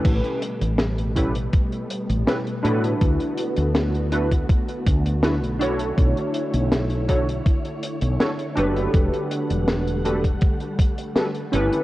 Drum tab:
CC |x---------------|----------------|----------------|----------------|
HH |xxxxxxxxxxxxxxxx|xxxxxxxxxxxxxxxx|xxxxxxxxxxxxxxxx|xxxxxxxxxxxxxxxx|
SD |----o-------o---|----o-------o---|----o-------o---|----o-------o---|
BD |o-----o-o-------|o------oo-o-----|o-----o-o-------|o------oo-o-----|